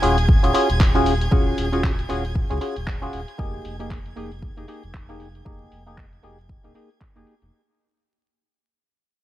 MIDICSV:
0, 0, Header, 1, 5, 480
1, 0, Start_track
1, 0, Tempo, 517241
1, 1225, Time_signature, 4, 2, 24, 8
1, 8569, End_track
2, 0, Start_track
2, 0, Title_t, "Violin section"
2, 0, Program_c, 0, 48
2, 0, Note_on_c, 0, 68, 79
2, 0, Note_on_c, 0, 92, 83
2, 6995, Note_off_c, 0, 68, 0
2, 6996, Note_off_c, 0, 92, 0
2, 8569, End_track
3, 0, Start_track
3, 0, Title_t, "Synth stab"
3, 0, Program_c, 1, 62
3, 20, Note_on_c, 1, 61, 83
3, 24, Note_on_c, 1, 65, 79
3, 27, Note_on_c, 1, 66, 79
3, 31, Note_on_c, 1, 68, 95
3, 156, Note_off_c, 1, 61, 0
3, 158, Note_off_c, 1, 65, 0
3, 160, Note_off_c, 1, 66, 0
3, 162, Note_off_c, 1, 68, 0
3, 400, Note_on_c, 1, 61, 72
3, 404, Note_on_c, 1, 65, 71
3, 407, Note_on_c, 1, 66, 70
3, 411, Note_on_c, 1, 68, 78
3, 482, Note_off_c, 1, 61, 0
3, 484, Note_off_c, 1, 65, 0
3, 486, Note_off_c, 1, 66, 0
3, 488, Note_off_c, 1, 68, 0
3, 499, Note_on_c, 1, 61, 82
3, 503, Note_on_c, 1, 65, 76
3, 506, Note_on_c, 1, 66, 74
3, 510, Note_on_c, 1, 68, 90
3, 636, Note_off_c, 1, 61, 0
3, 638, Note_off_c, 1, 65, 0
3, 640, Note_off_c, 1, 66, 0
3, 642, Note_off_c, 1, 68, 0
3, 879, Note_on_c, 1, 61, 90
3, 883, Note_on_c, 1, 65, 87
3, 886, Note_on_c, 1, 66, 85
3, 890, Note_on_c, 1, 68, 102
3, 1056, Note_off_c, 1, 61, 0
3, 1058, Note_off_c, 1, 65, 0
3, 1059, Note_off_c, 1, 66, 0
3, 1061, Note_off_c, 1, 68, 0
3, 1219, Note_on_c, 1, 61, 84
3, 1223, Note_on_c, 1, 65, 77
3, 1226, Note_on_c, 1, 66, 77
3, 1230, Note_on_c, 1, 68, 89
3, 1569, Note_off_c, 1, 61, 0
3, 1570, Note_off_c, 1, 65, 0
3, 1572, Note_off_c, 1, 66, 0
3, 1574, Note_off_c, 1, 68, 0
3, 1600, Note_on_c, 1, 61, 69
3, 1603, Note_on_c, 1, 65, 64
3, 1607, Note_on_c, 1, 66, 62
3, 1611, Note_on_c, 1, 68, 75
3, 1776, Note_off_c, 1, 61, 0
3, 1778, Note_off_c, 1, 65, 0
3, 1779, Note_off_c, 1, 66, 0
3, 1782, Note_off_c, 1, 68, 0
3, 1939, Note_on_c, 1, 61, 90
3, 1943, Note_on_c, 1, 65, 77
3, 1946, Note_on_c, 1, 66, 80
3, 1950, Note_on_c, 1, 68, 94
3, 2076, Note_off_c, 1, 61, 0
3, 2078, Note_off_c, 1, 65, 0
3, 2080, Note_off_c, 1, 66, 0
3, 2082, Note_off_c, 1, 68, 0
3, 2320, Note_on_c, 1, 61, 75
3, 2324, Note_on_c, 1, 65, 65
3, 2327, Note_on_c, 1, 66, 69
3, 2331, Note_on_c, 1, 68, 83
3, 2402, Note_off_c, 1, 61, 0
3, 2404, Note_off_c, 1, 65, 0
3, 2406, Note_off_c, 1, 66, 0
3, 2408, Note_off_c, 1, 68, 0
3, 2419, Note_on_c, 1, 61, 78
3, 2423, Note_on_c, 1, 65, 73
3, 2427, Note_on_c, 1, 66, 74
3, 2430, Note_on_c, 1, 68, 87
3, 2556, Note_off_c, 1, 61, 0
3, 2558, Note_off_c, 1, 65, 0
3, 2560, Note_off_c, 1, 66, 0
3, 2562, Note_off_c, 1, 68, 0
3, 2800, Note_on_c, 1, 61, 89
3, 2804, Note_on_c, 1, 65, 82
3, 2807, Note_on_c, 1, 66, 86
3, 2811, Note_on_c, 1, 68, 98
3, 2976, Note_off_c, 1, 61, 0
3, 2978, Note_off_c, 1, 65, 0
3, 2980, Note_off_c, 1, 66, 0
3, 2982, Note_off_c, 1, 68, 0
3, 3140, Note_on_c, 1, 58, 80
3, 3144, Note_on_c, 1, 63, 78
3, 3148, Note_on_c, 1, 67, 77
3, 3151, Note_on_c, 1, 68, 93
3, 3489, Note_off_c, 1, 58, 0
3, 3491, Note_off_c, 1, 63, 0
3, 3493, Note_off_c, 1, 67, 0
3, 3495, Note_off_c, 1, 68, 0
3, 3521, Note_on_c, 1, 58, 70
3, 3525, Note_on_c, 1, 63, 64
3, 3528, Note_on_c, 1, 67, 64
3, 3532, Note_on_c, 1, 68, 76
3, 3697, Note_off_c, 1, 58, 0
3, 3699, Note_off_c, 1, 63, 0
3, 3700, Note_off_c, 1, 67, 0
3, 3702, Note_off_c, 1, 68, 0
3, 3861, Note_on_c, 1, 58, 86
3, 3864, Note_on_c, 1, 63, 79
3, 3868, Note_on_c, 1, 67, 79
3, 3872, Note_on_c, 1, 68, 95
3, 3997, Note_off_c, 1, 58, 0
3, 3999, Note_off_c, 1, 63, 0
3, 4001, Note_off_c, 1, 67, 0
3, 4002, Note_off_c, 1, 68, 0
3, 4241, Note_on_c, 1, 58, 72
3, 4245, Note_on_c, 1, 63, 70
3, 4249, Note_on_c, 1, 67, 68
3, 4253, Note_on_c, 1, 68, 81
3, 4323, Note_off_c, 1, 58, 0
3, 4325, Note_off_c, 1, 63, 0
3, 4327, Note_off_c, 1, 67, 0
3, 4329, Note_off_c, 1, 68, 0
3, 4341, Note_on_c, 1, 58, 79
3, 4344, Note_on_c, 1, 63, 71
3, 4348, Note_on_c, 1, 67, 70
3, 4352, Note_on_c, 1, 68, 84
3, 4477, Note_off_c, 1, 58, 0
3, 4479, Note_off_c, 1, 63, 0
3, 4480, Note_off_c, 1, 67, 0
3, 4482, Note_off_c, 1, 68, 0
3, 4721, Note_on_c, 1, 58, 89
3, 4725, Note_on_c, 1, 63, 86
3, 4729, Note_on_c, 1, 67, 82
3, 4732, Note_on_c, 1, 68, 98
3, 4897, Note_off_c, 1, 58, 0
3, 4899, Note_off_c, 1, 63, 0
3, 4900, Note_off_c, 1, 67, 0
3, 4902, Note_off_c, 1, 68, 0
3, 5060, Note_on_c, 1, 58, 84
3, 5064, Note_on_c, 1, 63, 80
3, 5067, Note_on_c, 1, 67, 80
3, 5071, Note_on_c, 1, 68, 92
3, 5409, Note_off_c, 1, 58, 0
3, 5411, Note_off_c, 1, 63, 0
3, 5413, Note_off_c, 1, 67, 0
3, 5415, Note_off_c, 1, 68, 0
3, 5442, Note_on_c, 1, 58, 70
3, 5445, Note_on_c, 1, 63, 68
3, 5449, Note_on_c, 1, 67, 67
3, 5452, Note_on_c, 1, 68, 79
3, 5617, Note_off_c, 1, 58, 0
3, 5619, Note_off_c, 1, 63, 0
3, 5621, Note_off_c, 1, 67, 0
3, 5622, Note_off_c, 1, 68, 0
3, 5781, Note_on_c, 1, 58, 81
3, 5784, Note_on_c, 1, 63, 76
3, 5788, Note_on_c, 1, 67, 80
3, 5792, Note_on_c, 1, 68, 91
3, 5917, Note_off_c, 1, 58, 0
3, 5919, Note_off_c, 1, 63, 0
3, 5920, Note_off_c, 1, 67, 0
3, 5922, Note_off_c, 1, 68, 0
3, 6160, Note_on_c, 1, 58, 77
3, 6164, Note_on_c, 1, 63, 68
3, 6168, Note_on_c, 1, 67, 66
3, 6172, Note_on_c, 1, 68, 81
3, 6243, Note_off_c, 1, 58, 0
3, 6244, Note_off_c, 1, 63, 0
3, 6246, Note_off_c, 1, 67, 0
3, 6248, Note_off_c, 1, 68, 0
3, 6260, Note_on_c, 1, 58, 76
3, 6264, Note_on_c, 1, 63, 69
3, 6268, Note_on_c, 1, 67, 72
3, 6272, Note_on_c, 1, 68, 89
3, 6397, Note_off_c, 1, 58, 0
3, 6398, Note_off_c, 1, 63, 0
3, 6400, Note_off_c, 1, 67, 0
3, 6402, Note_off_c, 1, 68, 0
3, 6641, Note_on_c, 1, 58, 89
3, 6645, Note_on_c, 1, 63, 84
3, 6648, Note_on_c, 1, 67, 84
3, 6652, Note_on_c, 1, 68, 103
3, 6817, Note_off_c, 1, 58, 0
3, 6819, Note_off_c, 1, 63, 0
3, 6820, Note_off_c, 1, 67, 0
3, 6822, Note_off_c, 1, 68, 0
3, 8569, End_track
4, 0, Start_track
4, 0, Title_t, "Sub bass"
4, 0, Program_c, 2, 38
4, 24, Note_on_c, 2, 27, 90
4, 348, Note_off_c, 2, 27, 0
4, 404, Note_on_c, 2, 27, 89
4, 479, Note_off_c, 2, 27, 0
4, 645, Note_on_c, 2, 27, 86
4, 1184, Note_off_c, 2, 27, 0
4, 1225, Note_on_c, 2, 27, 94
4, 1414, Note_off_c, 2, 27, 0
4, 1464, Note_on_c, 2, 27, 78
4, 1904, Note_off_c, 2, 27, 0
4, 1945, Note_on_c, 2, 27, 85
4, 2268, Note_off_c, 2, 27, 0
4, 2325, Note_on_c, 2, 37, 94
4, 2400, Note_off_c, 2, 37, 0
4, 2565, Note_on_c, 2, 27, 92
4, 2864, Note_off_c, 2, 27, 0
4, 2905, Note_on_c, 2, 27, 90
4, 3010, Note_off_c, 2, 27, 0
4, 3145, Note_on_c, 2, 29, 100
4, 3334, Note_off_c, 2, 29, 0
4, 3385, Note_on_c, 2, 29, 79
4, 3824, Note_off_c, 2, 29, 0
4, 3865, Note_on_c, 2, 29, 88
4, 4188, Note_off_c, 2, 29, 0
4, 4247, Note_on_c, 2, 29, 84
4, 4320, Note_off_c, 2, 29, 0
4, 4486, Note_on_c, 2, 29, 90
4, 5025, Note_off_c, 2, 29, 0
4, 5066, Note_on_c, 2, 29, 101
4, 5255, Note_off_c, 2, 29, 0
4, 5306, Note_on_c, 2, 29, 83
4, 5745, Note_off_c, 2, 29, 0
4, 5784, Note_on_c, 2, 29, 86
4, 6108, Note_off_c, 2, 29, 0
4, 6166, Note_on_c, 2, 27, 97
4, 6240, Note_off_c, 2, 27, 0
4, 6645, Note_on_c, 2, 29, 87
4, 6719, Note_off_c, 2, 29, 0
4, 6886, Note_on_c, 2, 29, 83
4, 6960, Note_off_c, 2, 29, 0
4, 8569, End_track
5, 0, Start_track
5, 0, Title_t, "Drums"
5, 26, Note_on_c, 9, 46, 87
5, 119, Note_off_c, 9, 46, 0
5, 166, Note_on_c, 9, 42, 62
5, 259, Note_off_c, 9, 42, 0
5, 266, Note_on_c, 9, 36, 110
5, 358, Note_off_c, 9, 36, 0
5, 406, Note_on_c, 9, 42, 53
5, 499, Note_off_c, 9, 42, 0
5, 506, Note_on_c, 9, 46, 103
5, 598, Note_off_c, 9, 46, 0
5, 646, Note_on_c, 9, 42, 57
5, 739, Note_off_c, 9, 42, 0
5, 745, Note_on_c, 9, 36, 95
5, 748, Note_on_c, 9, 39, 101
5, 838, Note_off_c, 9, 36, 0
5, 841, Note_off_c, 9, 39, 0
5, 886, Note_on_c, 9, 42, 35
5, 979, Note_off_c, 9, 42, 0
5, 986, Note_on_c, 9, 46, 92
5, 1079, Note_off_c, 9, 46, 0
5, 1126, Note_on_c, 9, 42, 61
5, 1219, Note_off_c, 9, 42, 0
5, 1225, Note_on_c, 9, 36, 107
5, 1318, Note_off_c, 9, 36, 0
5, 1465, Note_on_c, 9, 46, 99
5, 1558, Note_off_c, 9, 46, 0
5, 1606, Note_on_c, 9, 42, 65
5, 1699, Note_off_c, 9, 42, 0
5, 1705, Note_on_c, 9, 36, 100
5, 1708, Note_on_c, 9, 39, 100
5, 1798, Note_off_c, 9, 36, 0
5, 1801, Note_off_c, 9, 39, 0
5, 1846, Note_on_c, 9, 42, 52
5, 1939, Note_off_c, 9, 42, 0
5, 1945, Note_on_c, 9, 46, 86
5, 2038, Note_off_c, 9, 46, 0
5, 2085, Note_on_c, 9, 42, 64
5, 2178, Note_off_c, 9, 42, 0
5, 2185, Note_on_c, 9, 36, 105
5, 2278, Note_off_c, 9, 36, 0
5, 2325, Note_on_c, 9, 42, 53
5, 2418, Note_off_c, 9, 42, 0
5, 2424, Note_on_c, 9, 46, 93
5, 2517, Note_off_c, 9, 46, 0
5, 2565, Note_on_c, 9, 42, 60
5, 2658, Note_off_c, 9, 42, 0
5, 2665, Note_on_c, 9, 36, 100
5, 2667, Note_on_c, 9, 39, 105
5, 2758, Note_off_c, 9, 36, 0
5, 2760, Note_off_c, 9, 39, 0
5, 2806, Note_on_c, 9, 42, 33
5, 2899, Note_off_c, 9, 42, 0
5, 2905, Note_on_c, 9, 46, 85
5, 2998, Note_off_c, 9, 46, 0
5, 3046, Note_on_c, 9, 42, 66
5, 3139, Note_off_c, 9, 42, 0
5, 3146, Note_on_c, 9, 36, 106
5, 3239, Note_off_c, 9, 36, 0
5, 3386, Note_on_c, 9, 46, 86
5, 3479, Note_off_c, 9, 46, 0
5, 3527, Note_on_c, 9, 42, 69
5, 3619, Note_off_c, 9, 42, 0
5, 3626, Note_on_c, 9, 36, 95
5, 3629, Note_on_c, 9, 39, 111
5, 3718, Note_off_c, 9, 36, 0
5, 3721, Note_off_c, 9, 39, 0
5, 3765, Note_on_c, 9, 42, 51
5, 3858, Note_off_c, 9, 42, 0
5, 3866, Note_on_c, 9, 46, 81
5, 3958, Note_off_c, 9, 46, 0
5, 4006, Note_on_c, 9, 42, 67
5, 4098, Note_off_c, 9, 42, 0
5, 4106, Note_on_c, 9, 36, 100
5, 4199, Note_off_c, 9, 36, 0
5, 4246, Note_on_c, 9, 42, 52
5, 4339, Note_off_c, 9, 42, 0
5, 4345, Note_on_c, 9, 46, 93
5, 4438, Note_off_c, 9, 46, 0
5, 4486, Note_on_c, 9, 42, 65
5, 4579, Note_off_c, 9, 42, 0
5, 4586, Note_on_c, 9, 36, 92
5, 4588, Note_on_c, 9, 39, 103
5, 4679, Note_off_c, 9, 36, 0
5, 4681, Note_off_c, 9, 39, 0
5, 4726, Note_on_c, 9, 42, 38
5, 4819, Note_off_c, 9, 42, 0
5, 4826, Note_on_c, 9, 46, 82
5, 4918, Note_off_c, 9, 46, 0
5, 4966, Note_on_c, 9, 42, 64
5, 5059, Note_off_c, 9, 42, 0
5, 5066, Note_on_c, 9, 36, 107
5, 5159, Note_off_c, 9, 36, 0
5, 5305, Note_on_c, 9, 46, 90
5, 5398, Note_off_c, 9, 46, 0
5, 5446, Note_on_c, 9, 42, 66
5, 5539, Note_off_c, 9, 42, 0
5, 5546, Note_on_c, 9, 36, 92
5, 5548, Note_on_c, 9, 39, 108
5, 5639, Note_off_c, 9, 36, 0
5, 5641, Note_off_c, 9, 39, 0
5, 5686, Note_on_c, 9, 42, 49
5, 5779, Note_off_c, 9, 42, 0
5, 5786, Note_on_c, 9, 46, 82
5, 5879, Note_off_c, 9, 46, 0
5, 5926, Note_on_c, 9, 42, 70
5, 6019, Note_off_c, 9, 42, 0
5, 6026, Note_on_c, 9, 36, 107
5, 6119, Note_off_c, 9, 36, 0
5, 6166, Note_on_c, 9, 42, 52
5, 6259, Note_off_c, 9, 42, 0
5, 6266, Note_on_c, 9, 46, 95
5, 6359, Note_off_c, 9, 46, 0
5, 6406, Note_on_c, 9, 42, 64
5, 6499, Note_off_c, 9, 42, 0
5, 6506, Note_on_c, 9, 36, 93
5, 6508, Note_on_c, 9, 39, 106
5, 6599, Note_off_c, 9, 36, 0
5, 6601, Note_off_c, 9, 39, 0
5, 6646, Note_on_c, 9, 42, 36
5, 6739, Note_off_c, 9, 42, 0
5, 6746, Note_on_c, 9, 46, 81
5, 6838, Note_off_c, 9, 46, 0
5, 6886, Note_on_c, 9, 42, 64
5, 6978, Note_off_c, 9, 42, 0
5, 8569, End_track
0, 0, End_of_file